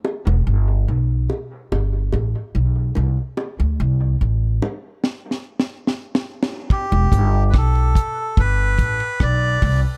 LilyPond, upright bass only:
\new Staff \with { instrumentName = "Upright bass" } { \clef bass \time 4/4 \key e \minor \tempo 4 = 72 r16 e,,16 g,,8 b,,8 r8 g,,8 a,,16 r16 b,,8 c,16 r16 | r16 d,16 c,8 a,,8 r2 r8 | r16 e,,16 g,,8 b,,8 r8 g,,8 a,,16 r16 b,,8 c,16 r16 | }